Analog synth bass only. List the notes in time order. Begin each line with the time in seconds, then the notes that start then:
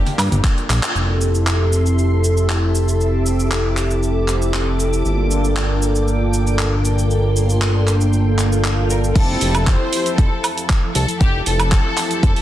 0.18 G2
0.32 G1
0.69 A#1
0.95 F1
5.05 G1
9.16 F1
9.42 F1
10.18 F1
10.95 C2
11.21 F1
11.47 F1
12.23 F1